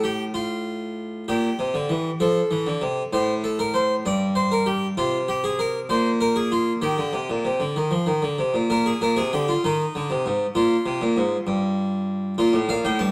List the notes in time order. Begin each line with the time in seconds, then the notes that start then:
Already playing: A2
0.04 G4
0.34 F4
1.28 A#2 G4
1.59 C3
1.74 D3
1.89 E3
2.20 F3 A4
2.51 E3
2.67 D3
2.82 C3
3.13 A2 C5
3.44 A4
3.59 A#4
3.74 C5
4.06 G2 D5
4.35 C5
4.52 A#4
4.66 G4
4.97 C3 F4
5.28 G4
5.44 G#4
5.59 A#4
5.89 A#2 C5
6.21 A#4
6.36 G#4
6.52 F4
6.82 D#3 G4
6.98 D3
7.13 C3
7.30 A#2
7.45 C3
7.60 D3
7.76 D#3
7.91 F3
8.06 D#3
8.22 D3
8.39 C3
8.54 A#2
8.70 A#2 A#4
8.86 G#4
9.01 A#2 A#4
9.16 C3 G#4
9.33 D3 G4
9.48 F4
9.64 D#3 D#4
9.95 D3
10.10 C3
10.26 G#2
10.55 A#2 F4
10.86 C3
11.01 A#2
11.17 G#2
11.47 G2
12.38 A#2 F4
12.53 A2
12.69 A#2 F5
12.85 A2 G5
12.99 G2 A5